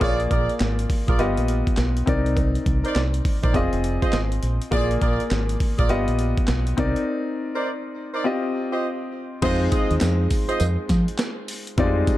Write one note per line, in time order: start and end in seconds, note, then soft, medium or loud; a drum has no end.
0.00 0.26 A#1 loud
0.00 1.16 A#3 medium
0.00 0.22 F4 medium
0.00 1.16 F4 medium
0.00 0.22 G#4 medium
0.00 1.17 G#4 medium
0.00 0.22 A#4 medium
0.00 0.10 C#5 medium
0.00 0.22 D5 loud
0.00 kick loud
0.00 closed hi-hat medium
0.00 cowbell medium
0.09 1.21 D5 medium
0.20 closed hi-hat medium
0.30 0.46 A#1 medium
0.30 0.52 F4 medium
0.30 0.52 G#4 medium
0.30 0.52 A#4 medium
0.30 0.52 D5 medium
0.30 kick loud
0.30 closed hi-hat medium
0.49 closed hi-hat medium
0.60 0.85 G#1 medium
0.60 snare loud
0.60 clap medium
0.60 closed hi-hat medium
0.60 cowbell medium
0.79 closed hi-hat medium
0.90 kick loud
0.90 open hi-hat medium
1.08 1.18 A#1 medium
1.08 1.23 F4 medium
1.08 1.23 G#4 medium
1.08 1.23 A#4 medium
1.08 1.24 D5 medium
1.08 kick medium
1.08 closed hi-hat medium
1.18 1.35 G1 loud
1.18 2.07 B3 medium
1.18 2.07 F4 medium
1.18 2.07 G4 medium
1.18 2.08 D#5 medium
1.18 closed hi-hat medium
1.18 cowbell medium
1.37 1.62 A#1 medium
1.37 closed hi-hat medium
1.48 closed hi-hat medium
1.67 kick medium
1.67 closed hi-hat medium
1.77 2.03 B1 medium
1.77 snare loud
1.77 clap medium
1.77 closed hi-hat medium
1.77 cowbell medium
1.97 closed hi-hat soft
2.06 2.56 C2 loud
2.06 3.51 C4 medium
2.06 3.51 D#4 medium
2.06 3.51 A#4 medium
2.06 3.52 D5 medium
2.06 kick loud
2.06 closed hi-hat medium
2.26 closed hi-hat medium
2.36 kick loud
2.36 closed hi-hat medium
2.36 cowbell medium
2.55 closed hi-hat medium
2.66 2.82 C2 loud
2.66 kick loud
2.66 closed hi-hat medium
2.84 3.00 D#4 medium
2.84 3.00 A#4 medium
2.84 3.00 C5 medium
2.84 3.00 D5 medium
2.84 closed hi-hat medium
2.95 3.20 C2 medium
2.95 snare loud
2.95 clap medium
2.95 closed hi-hat medium
2.95 cowbell medium
3.14 closed hi-hat medium
3.25 kick loud
3.25 open hi-hat medium
3.43 3.53 A#1 medium
3.43 3.59 D#4 medium
3.43 3.59 A#4 medium
3.43 3.59 C5 medium
3.43 3.59 D5 medium
3.43 kick loud
3.43 closed hi-hat soft
3.53 3.70 F1 loud
3.53 4.69 C4 medium
3.53 4.70 F4 medium
3.53 4.70 G#4 medium
3.53 4.70 D#5 medium
3.53 kick medium
3.53 closed hi-hat medium
3.53 cowbell medium
3.73 3.97 F1 medium
3.73 closed hi-hat medium
3.84 closed hi-hat medium
4.02 4.17 F4 medium
4.02 4.17 G#4 medium
4.02 4.18 C5 medium
4.02 4.18 D#5 medium
4.02 kick medium
4.02 closed hi-hat soft
4.12 4.38 G#1 medium
4.12 snare loud
4.12 clap medium
4.12 closed hi-hat medium
4.12 cowbell medium
4.32 closed hi-hat medium
4.43 4.58 A#1 medium
4.43 closed hi-hat medium
4.62 closed hi-hat medium
4.71 4.96 A#1 loud
4.71 5.87 A#3 medium
4.71 4.93 F4 medium
4.71 5.87 F4 medium
4.71 4.93 G#4 medium
4.71 5.88 G#4 medium
4.71 4.93 A#4 medium
4.71 4.93 D5 loud
4.71 5.88 D5 medium
4.71 kick loud
4.71 closed hi-hat medium
4.71 cowbell medium
4.91 closed hi-hat medium
5.01 5.17 A#1 loud
5.01 5.22 F4 medium
5.01 5.23 G#4 medium
5.01 5.23 A#4 medium
5.01 5.23 D5 medium
5.01 kick loud
5.01 closed hi-hat medium
5.20 closed hi-hat medium
5.30 5.55 G#1 loud
5.30 snare loud
5.30 clap medium
5.30 closed hi-hat medium
5.30 cowbell medium
5.49 closed hi-hat medium
5.60 kick loud
5.60 open hi-hat medium
5.78 5.88 A#1 loud
5.78 5.94 F4 medium
5.78 5.94 G#4 medium
5.78 5.94 A#4 medium
5.78 5.94 D5 medium
5.78 kick loud
5.78 closed hi-hat medium
5.89 6.05 G1 loud
5.89 6.78 B3 medium
5.89 6.78 F4 medium
5.89 6.78 G4 medium
5.89 6.78 D#5 medium
5.89 closed hi-hat medium
5.89 cowbell medium
6.08 6.33 A#1 medium
6.08 closed hi-hat medium
6.19 closed hi-hat medium
6.38 kick loud
6.38 closed hi-hat soft
6.47 6.73 B1 medium
6.47 snare loud
6.47 clap loud
6.47 closed hi-hat medium
6.47 cowbell medium
6.67 closed hi-hat medium
6.77 6.93 C2 medium
6.77 8.21 C4 medium
6.77 8.22 D#4 medium
6.77 8.22 A#4 medium
6.77 8.23 D5 medium
6.77 kick loud
6.77 closed hi-hat medium
6.96 closed hi-hat medium
7.55 7.70 D#4 medium
7.55 7.70 A#4 medium
7.55 7.71 C5 medium
7.55 7.71 D5 medium
8.14 8.29 D#4 medium
8.14 8.29 A#4 medium
8.14 8.29 C5 medium
8.14 8.30 D5 medium
8.24 9.40 C4 medium
8.24 9.40 F4 medium
8.24 9.41 G4 medium
8.24 9.41 D#5 medium
8.73 8.88 F4 medium
8.73 8.88 G4 medium
8.73 8.88 C5 medium
8.73 8.88 D#5 medium
9.42 9.67 F2 loud
9.42 11.74 G#3 medium
9.42 11.74 C4 medium
9.42 11.74 D#4 medium
9.42 9.64 F4 medium
9.42 11.74 F4 medium
9.42 9.64 G#4 medium
9.42 9.64 C5 medium
9.42 11.75 C5 medium
9.42 9.64 D#5 medium
9.42 kick loud
9.42 closed hi-hat medium
9.42 crash loud
9.42 cowbell medium
9.72 9.93 F4 medium
9.72 9.93 G#4 medium
9.72 9.93 C5 medium
9.72 9.93 D#5 medium
9.72 kick loud
9.72 closed hi-hat medium
9.72 tambourine medium
9.91 10.00 D#2 medium
9.91 closed hi-hat medium
10.01 10.26 F2 medium
10.01 snare loud
10.01 clap medium
10.01 closed hi-hat medium
10.01 tambourine loud
10.01 cowbell medium
10.31 kick loud
10.31 open hi-hat medium
10.31 tambourine medium
10.49 10.65 F4 medium
10.49 10.65 G#4 medium
10.49 10.65 C5 medium
10.49 10.65 D#5 medium
10.49 closed hi-hat medium
10.60 10.76 F2 loud
10.60 closed hi-hat medium
10.60 tambourine medium
10.60 cowbell medium
10.89 11.05 F3 loud
10.89 kick medium
10.89 snare medium
10.89 closed hi-hat medium
10.89 tambourine medium
11.08 closed hi-hat medium
11.18 snare loud
11.18 clap medium
11.18 closed hi-hat medium
11.18 tambourine medium
11.18 cowbell medium
11.48 open hi-hat medium
11.48 tambourine medium
11.67 closed hi-hat medium
11.77 12.03 F2 loud
11.77 11.86 G3 medium
11.77 12.18 C4 medium
11.77 12.18 D#4 medium
11.77 12.18 F4 medium
11.77 12.18 D5 medium
11.77 kick loud
11.77 closed hi-hat medium
11.77 cowbell medium
11.84 12.18 G#3 medium
12.07 kick loud
12.07 closed hi-hat medium
12.07 tambourine medium